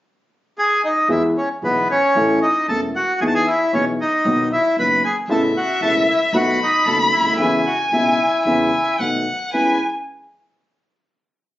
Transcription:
0.58 0.82 G#4 soft
0.58 0.82 G#5 medium
0.84 1.08 D#4 soft
0.84 1.09 D#5 medium
1.08 1.31 E2 medium
1.08 1.32 E2 medium
1.08 1.32 E3 medium
1.08 1.32 G#3 medium
1.08 1.32 B3 medium
1.08 1.22 E4 soft
1.08 1.32 G#4 medium
1.08 1.23 E5 medium
1.37 1.49 C#4 soft
1.37 1.49 C#5 medium
1.62 1.85 B1 soft
1.62 1.86 B1 soft
1.62 1.86 B2 soft
1.62 1.85 E3 soft
1.62 1.85 G#3 soft
1.62 1.86 B3 soft
1.62 1.88 B3 soft
1.62 1.86 G#4 soft
1.62 1.88 B4 medium
1.91 2.39 C#4 soft
1.91 2.40 C#5 medium
2.15 2.38 A1 medium
2.15 2.39 A2 medium
2.15 2.38 E3 medium
2.15 2.39 A3 medium
2.15 2.39 C#4 medium
2.15 2.39 A4 medium
2.42 2.67 D#4 medium
2.42 2.67 D#5 medium
2.68 2.91 E1 soft
2.68 2.91 E2 soft
2.68 2.91 E3 soft
2.68 2.91 A3 soft
2.68 2.91 C#4 soft
2.68 2.81 A4 soft
2.68 2.91 A4 soft
2.68 2.81 A5 medium
2.96 3.20 F#4 soft
2.96 3.20 F#5 medium
3.20 3.43 E2 medium
3.20 3.44 E3 medium
3.20 3.43 B3 soft
3.20 3.44 D#4 medium
3.20 3.24 G#4 medium
3.20 3.44 G#4 medium
3.20 3.24 G#5 medium
3.27 3.34 A5 medium
3.35 3.47 G#4 medium
3.35 3.47 G#5 medium
3.47 3.72 E4 soft
3.47 3.74 E5 medium
3.73 3.95 B1 soft
3.73 3.95 B2 soft
3.73 3.95 E3 soft
3.73 3.95 B3 soft
3.73 3.85 C#4 soft
3.73 3.95 D#4 soft
3.73 3.96 G#4 soft
3.73 3.85 C#5 medium
4.01 4.49 D#4 medium
4.01 4.49 D#5 medium
4.25 4.47 B1 medium
4.25 4.48 B1 medium
4.25 4.48 B2 medium
4.25 4.47 D#3 medium
4.25 4.48 F#3 medium
4.25 4.48 B3 medium
4.25 4.48 F#4 medium
4.52 4.77 E4 medium
4.52 4.76 E5 medium
4.76 4.99 F#1 soft
4.76 5.00 F#1 soft
4.76 5.00 F#2 soft
4.76 5.00 D#3 soft
4.76 5.00 F#3 soft
4.76 5.00 B3 soft
4.76 5.00 F#4 soft
4.76 5.03 B4 medium
4.76 5.05 B5 medium
5.05 5.17 G#4 soft
5.05 5.16 G#5 medium
5.28 5.51 A1 medium
5.28 5.52 A1 medium
5.28 5.52 A2 medium
5.28 5.51 C#3 medium
5.28 5.51 A3 medium
5.28 5.52 B3 medium
5.28 5.52 E4 medium
5.28 5.43 A4 medium
5.28 6.36 E5 medium
5.28 5.42 A5 medium
5.57 5.81 F#4 medium
5.57 5.81 F#5 medium
5.81 6.03 E1 soft
5.81 6.04 E1 medium
5.81 6.04 E2 soft
5.81 6.04 C#3 soft
5.81 6.04 A3 soft
5.81 6.04 B3 soft
5.81 6.04 E4 soft
5.81 5.95 A4 medium
5.81 5.94 A5 medium
6.09 6.21 E4 medium
6.09 6.21 E5 medium
6.33 6.56 B1 medium
6.33 6.56 B2 medium
6.33 6.56 D#3 medium
6.33 6.56 A3 medium
6.33 6.56 B3 medium
6.33 6.56 F#4 medium
6.33 6.60 F#4 medium
6.33 6.60 F#5 medium
6.33 7.39 B5 medium
6.62 6.86 D#4 medium
6.62 6.86 D#5 medium
6.86 7.08 F#1 medium
6.86 7.09 F#1 soft
6.86 7.09 F#2 soft
6.86 7.09 D#3 soft
6.86 7.09 A3 soft
6.86 7.09 B3 soft
6.86 7.09 F#4 soft
6.86 6.99 A4 medium
6.86 6.98 A5 medium
7.12 7.62 E4 medium
7.12 7.62 E5 medium
7.18 7.24 C#2 soft
7.18 7.26 C#2 soft
7.25 7.31 D2 soft
7.25 7.33 D2 medium
7.32 7.38 D#2 medium
7.32 7.39 D#2 medium
7.38 7.61 E2 medium
7.38 7.62 E2 medium
7.38 7.62 C#3 medium
7.38 7.62 E3 medium
7.38 7.62 G#3 medium
7.38 7.62 B3 medium
7.38 7.62 E4 medium
7.38 8.42 G#5 medium
7.67 7.79 F#4 soft
7.67 7.78 F#5 medium
7.92 8.14 B1 soft
7.92 8.15 B1 soft
7.92 8.15 B2 soft
7.92 8.15 C#3 soft
7.92 8.15 G#3 soft
7.92 8.15 B3 soft
7.92 8.15 E4 soft
7.92 8.96 E4 soft
7.92 8.96 E5 medium
8.45 8.68 E2 medium
8.45 8.69 E2 medium
8.45 8.69 C#3 medium
8.45 8.69 E3 medium
8.45 8.69 G#3 medium
8.45 8.69 B3 medium
8.45 8.69 E4 medium
8.45 9.01 G#5 medium
8.99 9.22 B1 soft
8.99 9.22 B2 soft
8.99 9.23 D#3 soft
8.99 9.22 A3 soft
8.99 9.22 B3 soft
8.99 9.23 F#4 soft
8.99 9.53 F#5 medium
9.53 9.75 E2 soft
9.53 9.76 E2 soft
9.53 9.76 G#3 soft
9.53 9.76 C#4 soft
9.53 9.76 E4 soft
9.53 9.78 B4 medium
9.53 9.78 G#5 medium

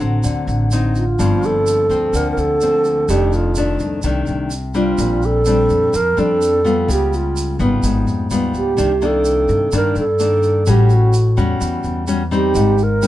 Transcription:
0.00 0.22 A1 medium
0.00 0.22 D3 medium
0.00 0.68 F#3 medium
0.00 0.68 C4 medium
0.00 0.49 D4 medium
0.00 shaker soft
0.23 0.46 D2 medium
0.23 1.16 D3 soft
0.23 shaker medium
0.47 1.15 A1 medium
0.47 shaker soft
0.71 1.04 F#3 medium
0.71 1.04 C4 medium
0.71 1.04 D#4 medium
0.71 shaker medium
0.95 1.47 F4 medium
0.95 shaker soft
1.19 1.86 G1 medium
1.19 2.12 G2 medium
1.19 1.86 F3 medium
1.19 1.87 A#3 medium
1.19 1.87 C4 medium
1.19 shaker medium
1.43 2.18 A4 loud
1.43 shaker soft
1.67 shaker medium
1.89 2.12 D2 medium
1.89 2.57 F3 medium
1.89 2.58 A#3 medium
1.89 2.58 C4 medium
1.89 shaker soft
2.13 2.36 D2 medium
2.13 3.07 D3 medium
2.13 2.31 A#4 medium
2.13 shaker medium
2.31 2.40 A#4 medium
2.37 3.05 D2 medium
2.37 3.11 A4 loud
2.37 shaker soft
2.61 3.07 F3 soft
2.61 3.07 A#3 soft
2.61 3.08 C4 medium
2.61 shaker medium
2.85 shaker soft
3.09 3.76 F1 medium
3.09 4.01 F2 medium
3.09 3.53 D#3 medium
3.09 3.53 A3 medium
3.09 3.53 D4 medium
3.09 3.36 G4 medium
3.09 shaker medium
3.33 3.81 F4 medium
3.33 shaker soft
3.55 4.00 D#3 medium
3.55 4.00 A3 medium
3.55 4.01 D4 medium
3.55 shaker medium
3.79 4.02 C2 medium
3.79 shaker soft
4.02 4.26 C2 medium
4.02 4.96 C3 soft
4.02 4.51 D#3 soft
4.02 4.51 A3 soft
4.02 4.51 D4 medium
4.02 shaker medium
4.26 4.95 C2 medium
4.26 shaker soft
4.51 shaker medium
4.74 5.44 G3 medium
4.74 5.45 C4 medium
4.74 5.46 D4 medium
4.74 5.27 F4 medium
4.74 shaker soft
4.98 5.65 A#1 medium
4.98 5.91 A#2 medium
4.98 shaker medium
5.22 5.97 A4 loud
5.22 shaker soft
5.45 5.93 G3 soft
5.45 5.93 C4 medium
5.45 5.94 D4 medium
5.45 shaker medium
5.69 5.92 F2 medium
5.69 shaker soft
5.93 6.16 F2 medium
5.93 6.86 F3 medium
5.93 6.21 A#4 loud
5.93 shaker medium
6.17 6.84 F2 medium
6.17 6.61 G3 medium
6.17 6.61 C4 medium
6.17 6.61 D4 medium
6.17 6.89 A4 loud
6.17 shaker soft
6.42 shaker medium
6.64 7.55 G3 medium
6.64 7.56 B3 medium
6.64 7.56 F4 medium
6.64 shaker soft
6.88 7.55 C#2 loud
6.88 7.80 C#3 medium
6.88 7.17 G4 medium
6.88 shaker medium
7.13 7.61 F4 medium
7.13 shaker soft
7.37 shaker medium
7.59 7.81 G#1 medium
7.59 8.27 G3 medium
7.59 8.27 B3 medium
7.59 8.27 F4 medium
7.59 shaker soft
7.83 8.05 G#1 medium
7.83 8.75 G#2 soft
7.83 shaker medium
8.07 8.28 F2 medium
8.07 shaker soft
8.31 8.52 D#2 medium
8.31 8.74 G3 medium
8.31 8.74 B3 medium
8.31 8.74 F4 medium
8.31 shaker medium
8.54 8.75 C#2 medium
8.54 9.07 G4 medium
8.54 shaker soft
8.77 9.45 C2 medium
8.77 9.70 C3 soft
8.77 8.91 D#3 medium
8.77 8.91 A#3 medium
8.77 8.92 D4 medium
8.77 shaker medium
9.02 9.68 D#3 medium
9.02 9.68 A#3 medium
9.02 9.69 D4 medium
9.02 shaker soft
9.06 9.74 A4 medium
9.25 shaker medium
9.49 9.71 G2 medium
9.49 shaker soft
9.72 10.64 G2 medium
9.72 9.94 G2 medium
9.72 10.03 D#3 medium
9.72 10.03 A#3 medium
9.72 10.03 D4 medium
9.72 shaker medium
9.76 9.96 A#4 medium
9.96 10.62 G2 medium
9.96 10.71 A4 loud
9.96 shaker soft
10.19 10.63 D#3 soft
10.19 10.63 A#3 medium
10.19 10.63 D4 medium
10.19 shaker medium
10.43 shaker soft
10.66 11.34 A1 medium
10.66 11.59 A2 medium
10.66 11.13 G3 medium
10.66 11.14 C#4 medium
10.66 11.14 F#4 medium
10.66 10.95 G4 medium
10.66 shaker medium
10.90 11.39 F#4 medium
10.90 shaker soft
11.13 shaker medium
11.37 11.59 E2 medium
11.37 12.04 G3 medium
11.37 12.04 C#4 medium
11.37 12.04 F#4 medium
11.37 shaker soft
11.61 11.83 E2 medium
11.61 12.53 E3 medium
11.61 shaker medium
11.84 12.51 E2 medium
11.84 shaker soft
12.07 12.22 G3 medium
12.07 12.22 C#4 soft
12.07 12.22 F#4 medium
12.07 shaker medium
12.31 12.75 G3 medium
12.31 12.75 C4 medium
12.31 12.75 D#4 medium
12.31 12.85 G4 medium
12.31 shaker soft
12.55 13.07 G#1 medium
12.55 13.07 G#2 medium
12.55 shaker medium
12.78 shaker soft
12.83 13.07 A#4 loud
13.02 13.07 G3 medium
13.02 13.07 C4 medium
13.02 13.07 D#4 medium
13.02 shaker medium

